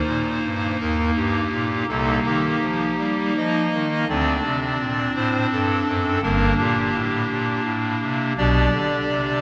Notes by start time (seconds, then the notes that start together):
Already playing: A#3 D#4 C5
0.07 A#2
0.44 G2
0.80 D#2 A#4
1.16 G2 G4
1.52 A#2
1.88 C2 C3 A#3 D#4 A4
2.25 D#3 G4
2.63 F3
2.99 G3
3.37 F3 D#5
3.75 D#3
4.09 D2 D3 C4 D4 D5
4.44 C3
4.80 A#2
5.16 A2 C5
5.52 G2 A4
5.87 F#2
6.22 G1 G2 A#3 D4 A#4
6.59 A#2 G4
6.94 A2
7.30 A#2
7.65 A2
8.02 C3
8.38 B1 B2 D4 G4 D5
8.74 D3
9.09 C3